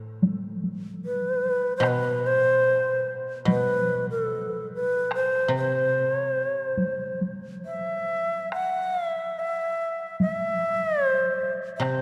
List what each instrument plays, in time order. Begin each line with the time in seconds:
Already playing: koto A2
0.23 taiko high
0.63 taiko high
1.05 shakuhachi B4
1.77 koto B2, shakuhachi C5
1.83 taiko rim
1.87 shakuhachi B4
2.26 shakuhachi C5
3.45 koto B2, shakuhachi B4, taiko high
4.11 shakuhachi A4
4.75 shakuhachi B4
5.11 taiko rim
5.15 shakuhachi C5
5.48 koto C3
5.57 shakuhachi C5
6.15 shakuhachi C#5
6.30 shakuhachi C5
6.47 shakuhachi C#5
6.63 shakuhachi C5
6.77 taiko high
7.21 taiko high
7.66 shakuhachi E5
8.52 shakuhachi F#5, taiko rim
8.95 shakuhachi F5
9.06 shakuhachi E5
9.39 shakuhachi E5
10.20 shakuhachi E5, taiko high
11.09 shakuhachi C5
11.77 koto C3, shakuhachi E5
11.82 shakuhachi C5, taiko rim